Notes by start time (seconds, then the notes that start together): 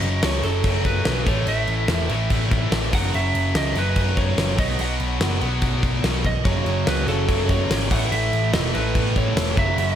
Already playing: F#2 C#3 F#3 D#5
0.02 F#1, crash
0.23 C#2 C#5, snare, crash
0.43 F#1 A4, snare, crash
0.64 F#1 F#2 C#3 F#3, kick, crash
0.85 B4, kick, crash
1.05 B1, snare, crash
1.26 A1 A2 E3 A3 C#5, kick, crash
1.47 A1 E5, crash
1.68 A1, crash
1.88 E1, snare, crash
2.09 A1 A2 E3 A3, crash
2.30 A1, kick, crash
2.51 kick, crash
2.72 A1, snare, crash
2.91 F#1 F#2 C#3 F#3 F#5, kick, crash
3.14 F#1 E5, crash
3.35 F#1, crash
3.55 C#2 D#5, snare, crash
3.75 F#1 F#2 C#3 F#3 B4, snare, crash
3.96 F#1, kick, crash
4.17 C#5, kick, crash
4.38 F#1, snare, crash
4.57 B1 B2 F#3 B3 D#5, kick, crash
4.79 B1 F#5, crash
5.00 B1, crash
5.20 F#1, snare, crash
5.41 B1 B2 F#3 B3, crash
5.62 B1, kick, crash
5.83 kick, crash
6.03 B1, snare, crash
6.24 B1 D#5, kick, crash
6.45 F#1 F#2 C#3 F#3 C#5, kick, crash
6.66 F#1, crash
6.86 C#2 B4, snare, crash
7.07 F#1 C#3 F#3 A4, snare, crash
7.11 F#2
7.27 F#1 F#2 C#3 F#3, kick, crash
7.49 C#5, kick, crash
7.70 G#1, snare, crash
7.90 A1 A2 E3 A3 F#5, kick, crash
8.12 A1 E5, crash
8.33 A1, crash
8.53 E1 A2 E3 A3 D#5, snare, crash
8.73 A1 A2 E3 A3 B4, crash
8.95 A1, kick, crash
9.16 C#5, kick, crash
9.36 E1, snare, crash
9.56 F#1 F#2 C#3 F#3 E5, kick, crash
9.78 F#1 E5, crash
9.90 D#5